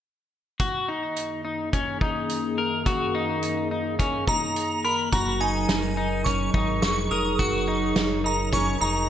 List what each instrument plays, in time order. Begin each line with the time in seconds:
0.59 ambient pad F#2 D#3 A#3 G#4, clean electric guitar F#4, kick, closed hi-hat
0.88 clean electric guitar D#4
1.16 closed hi-hat
1.45 clean electric guitar D#4
1.73 clean electric guitar C#4, kick, closed hi-hat
2.01 clean electric guitar D#4, kick
2.29 closed hi-hat
2.58 clean electric guitar A#4
2.86 clean electric guitar F#4, kick, closed hi-hat
3.15 clean electric guitar D#4
3.43 closed hi-hat
3.71 clean electric guitar D#4
3.99 clean electric guitar C#4, kick, closed hi-hat
4.28 clean electric guitar D#4, synth bell A#5, kick
4.56 closed hi-hat
4.84 clean electric guitar A#4, synth bell B5
5.12 analog synth bass F#1, ambient pad F#3 D#4 G#4 A#4, clean electric guitar F#4, synth bell A#5, kick, closed hi-hat
5.41 clean electric guitar D#4, synth bell G#5
5.69 analog synth bass F#1, snare, closed hi-hat
5.97 clean electric guitar D#4
6.24 clean electric guitar C#4, synth bell C#6, kick, closed hi-hat
6.54 analog synth bass G#1, clean electric guitar D#4, kick
6.82 analog synth bass F1, synth bell C#6, snare, closed hi-hat
7.11 analog synth bass F1, clean electric guitar A#4, synth bell D#6
7.39 analog synth bass F#1, clean electric guitar F#4, synth bell C#6, kick, closed hi-hat
7.68 clean electric guitar D#4
7.96 analog synth bass F#1, snare, closed hi-hat
8.24 clean electric guitar D#4, synth bell A#5
8.53 clean electric guitar C#4, synth bell C#6, kick, closed hi-hat
8.81 analog synth bass F1, clean electric guitar D#4, synth bell A#5